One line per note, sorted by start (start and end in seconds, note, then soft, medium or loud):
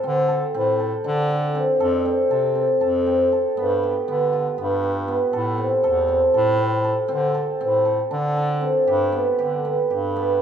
0.00 0.54 C4 medium
0.00 0.62 F4 medium
0.00 0.90 G4 medium
0.00 0.28 A4 medium
0.06 0.45 D3 loud
0.28 0.79 A4 medium
0.54 0.95 A2 medium
0.54 1.55 C4 medium
0.80 1.30 A4 medium
1.04 1.65 D3 loud
1.04 4.77 D4 medium
1.30 1.80 A4 medium
1.55 2.05 C4 medium
1.80 2.21 F2 medium
1.80 2.30 A4 medium
2.05 2.55 C4 medium
2.31 2.71 C3 medium
2.31 2.80 A4 medium
2.55 3.06 C4 medium
2.81 3.42 F2 medium
2.81 3.32 A4 medium
3.07 3.63 C4 medium
3.32 5.33 A4 medium
3.57 3.98 G2 medium
3.57 4.08 B3 medium
3.83 4.83 G4 medium
4.08 4.49 D3 medium
4.08 4.58 B3 medium
4.33 7.69 F4 medium
4.58 5.20 G2 loud
4.58 5.08 B3 medium
4.83 7.97 G4 medium
5.08 5.64 B3 medium
5.33 5.75 A2 medium
5.33 5.83 A4 medium
5.58 6.08 C4 medium
5.84 6.25 E2 medium
5.84 6.34 A4 medium
6.08 6.58 C4 medium
6.34 6.96 A2 loud
6.34 6.84 A4 medium
6.58 7.08 C4 medium
6.84 7.34 A4 medium
7.08 7.51 D3 medium
7.08 7.60 C4 medium
7.34 7.85 A4 medium
7.61 8.01 A2 medium
7.61 8.61 C4 medium
7.85 8.36 A4 medium
8.11 8.73 D3 loud
8.11 10.42 D4 medium
8.37 10.42 A4 medium
8.61 9.18 C4 medium
8.88 9.29 G2 medium
8.88 9.38 G4 medium
9.12 9.64 B3 medium
9.39 9.80 D3 medium
9.39 9.90 G4 medium
9.65 10.16 B3 medium
9.90 10.42 G2 medium
9.90 10.42 G4 medium
10.16 10.42 B3 medium